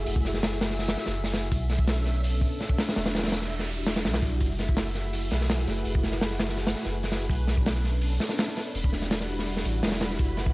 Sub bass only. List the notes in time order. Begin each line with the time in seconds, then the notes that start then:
0.07 F#1
1.07 F#1
1.52 B1
2.96 E1
4.05 B1
4.41 F#1
5.31 B1
5.67 F#1
5.85 F#1
6.85 F#1
7.30 B1
8.74 E1
9.65 A1
9.83 E1
10.19 F#1